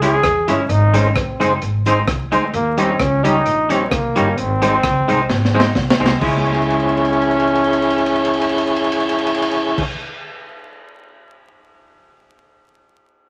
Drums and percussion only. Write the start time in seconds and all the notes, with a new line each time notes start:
0.02 closed hi-hat
0.23 kick, cross-stick, closed hi-hat
0.48 closed hi-hat
0.70 closed hi-hat
0.94 closed hi-hat
1.16 kick, cross-stick, closed hi-hat
1.41 closed hi-hat
1.62 closed hi-hat
1.86 closed hi-hat
2.07 kick, cross-stick, closed hi-hat
2.32 closed hi-hat
2.54 closed hi-hat
2.78 closed hi-hat
2.99 kick, cross-stick, closed hi-hat
3.25 closed hi-hat
3.46 closed hi-hat
3.70 closed hi-hat
3.91 kick, cross-stick, closed hi-hat
4.16 closed hi-hat
4.38 closed hi-hat
4.62 cross-stick, closed hi-hat
4.83 kick, cross-stick, closed hi-hat
5.09 closed hi-hat
5.29 snare
5.45 snare
5.60 snare
5.75 kick, snare
5.90 snare
6.06 snare
6.21 kick, crash
6.46 crash
6.54 ride
6.62 crash
6.70 ride
6.80 crash
6.89 ride
6.97 crash
7.05 ride
7.13 crash
7.22 ride
7.31 crash
7.40 ride
7.47 crash
7.55 ride
7.64 crash
7.73 ride
7.82 crash
7.90 ride
7.98 crash
8.06 ride
8.16 crash
8.25 ride
8.33 crash
8.41 ride
8.49 crash
8.58 ride
8.67 crash
8.76 ride
8.84 crash
8.92 ride
9.00 crash
9.09 ride
9.18 crash
9.27 ride
9.34 crash
9.42 ride
9.51 crash
9.78 kick, crash